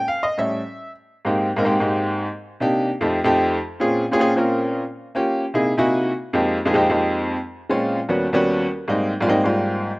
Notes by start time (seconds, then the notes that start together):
0.08 F5
0.23 D#5
0.38 A2 G3 C#4 E5
1.25 G#2 A#3 C4 D#4 G4
1.56 G#2 A#3 C4 D#4 A#4
1.65 G#2 A#3 C4 D#4 G4
1.80 G#2 A#3 C4 D#4 G4
2.60 C3 A#3 D4 D#4 G4
3.01 F2 A3 C4 D#4 G4
3.24 F2 A3 C4 D#4 G4
3.80 A#2 C4 C#4 F4 G#4
4.11 A#2 C4 C#4 F4 G#4
4.19 A#2 C4 C#4 F4 G#4
4.36 A#2 C4 C#4 F4 A#4
5.15 A#3 C#4 F4 G4
5.54 C3 A#3 D#4 E4 G#4
5.63 E5
5.77 C3 A#3 D#4 E4 F#4 G#5
6.33 F2 G#3 A#3 C4 D#4 G4
6.65 F2 G#3 A#3 C4 D#4 G#4
6.74 F2 G#3 A#3 C4 D#4 G4
6.90 F2 G#3 A#3 C4 D#4 G4
7.69 A#2 G#3 C4 C#4 F4
8.09 D#2 G3 B3 C#4 F#4
8.33 D#2 G3 B3 C#4 F#4
8.88 G#2 G3 A#3 C4 D#4
9.21 G#2 G3 A#3 C4 F4
9.28 G#2 G3 A#3 C4 D#4
9.44 G#2 G3 A#3 C4 F4